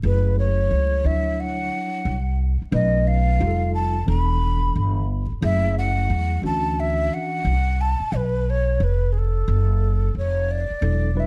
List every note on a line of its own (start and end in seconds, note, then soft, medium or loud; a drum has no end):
0.03 0.67 F#1 loud
0.03 1.01 F#3 medium
0.03 1.01 A3 medium
0.03 1.01 E4 medium
0.03 1.01 G#4 medium
0.03 0.36 B4 medium
0.39 1.07 C#5 medium
0.71 1.03 C#2 medium
1.04 1.69 D2 medium
1.04 1.13 F3 medium
1.04 2.15 D4 medium
1.04 2.15 E4 medium
1.04 2.15 C#5 medium
1.04 1.41 E5 medium
1.10 2.18 F#3 medium
1.40 2.40 F#5 loud
2.05 2.59 C2 medium
2.62 muted upright bass stroke soft
2.72 3.37 B1 loud
2.72 3.40 A3 medium
2.72 3.40 C#4 medium
2.72 3.39 D#4 medium
2.72 3.41 B4 medium
2.72 3.08 D#5 medium
3.07 3.74 F5 medium
3.39 4.05 F1 loud
3.39 3.98 G3 medium
3.39 3.98 D#4 medium
3.39 3.99 F4 medium
3.39 3.49 G4 medium
3.47 4.02 A4 medium
3.74 4.06 A5 medium
4.06 4.72 E1 loud
4.06 5.04 E3 medium
4.06 5.04 B3 medium
4.06 5.05 D4 medium
4.06 5.05 A4 medium
4.06 5.05 B5 loud
4.76 5.29 G1 medium
5.32 muted upright bass stroke soft
5.41 6.07 F#1 loud
5.41 6.39 F#3 medium
5.41 5.51 G#3 soft
5.41 6.40 E4 medium
5.41 6.40 G#4 medium
5.41 5.75 E5 loud
5.49 6.43 A3 medium
5.78 6.41 F#5 loud
6.10 6.42 E2 medium
6.42 7.08 D2 medium
6.42 7.53 E3 medium
6.42 7.53 C#4 medium
6.42 7.54 D4 medium
6.42 7.54 F#4 medium
6.42 6.81 A5 loud
6.79 7.15 E5 loud
7.13 7.82 F#5 loud
7.45 7.98 C2 medium
7.81 8.17 A5 loud
8.00 muted upright bass stroke soft
8.12 8.76 B1 medium
8.12 8.51 B4 medium
8.50 8.84 C#5 medium
8.80 9.44 F1 medium
8.80 9.14 B4 medium
9.12 9.19 G#4 medium
9.18 10.17 A4 medium
9.48 10.12 F#1 loud
10.15 10.68 F1 medium
10.15 10.52 C#5 medium
10.51 11.21 D5 medium
10.70 muted upright bass stroke soft
10.81 11.27 E1 loud
10.81 11.09 F#3 medium
10.81 11.09 D4 medium
10.81 11.09 E4 medium
10.81 11.09 A4 medium
11.15 11.27 F#3 medium
11.15 11.27 D4 medium
11.15 11.27 E4 medium
11.15 11.27 B4 medium
11.19 11.27 E5 medium